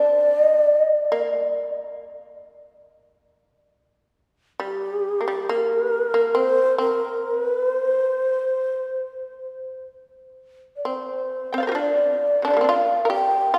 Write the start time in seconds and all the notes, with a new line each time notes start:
Already playing: D4 D5
0.42 D#5
0.59 D5
0.77 D#5
0.95 D5
1.12 A#3
1.40 G3
4.60 G3
4.65 G4
5.21 A#3
5.28 G3
5.49 A#3 A#4
6.14 A#3
6.35 C4 C5
6.78 C4 A#4
7.34 B4
7.69 C5
10.76 D5
10.85 C4 C5
11.53 C4 G5
11.58 D5 F5
11.63 C5
11.67 G4 A#4
11.72 D4 F4
11.80 D5
12.42 C3 D4
12.48 D3 F3
12.53 G3 A#3
12.61 C4 D4
12.69 F4 F5
13.05 A#4
13.10 G4 G5
13.54 F4 F5